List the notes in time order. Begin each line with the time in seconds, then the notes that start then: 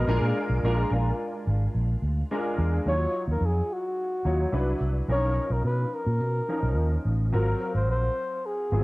Already playing: G#3 B3 A#4
0.08 A#1 G#3 D4 F4 A#4
0.21 A#2
0.50 B1
0.63 A#1 G#3 D4 F4 A#4
0.91 A#1 G#3 D4 F4 A#4
1.47 G#1
1.75 A#1
2.02 D2
2.31 G#3 D4 F4 A#4
2.58 E2
2.86 D#2 F#3 D#4 F4 C#5
3.28 D#2
3.32 A#4
3.41 F2
3.46 G#4
3.73 F#4
4.25 D#2 F#3 D#4 F4 C#5
4.52 C2 F#3 D4 E4 B4
4.81 C2
5.08 B1 F3 C#4 D4 A#4
5.12 D#4 C#5
5.50 B1 A#4
5.64 B2 B4
5.95 A#4
6.06 A#2
6.20 B2
6.48 F3 C#4 D#4 A#4
6.63 B1
6.76 D#2
7.05 A1
7.32 G#1 F#3 C4 F4 A#4
7.75 G#1 C5
7.88 A#1 C5
8.46 G#4
8.72 G#1 F#3 B3 F4 G#4
8.79 C4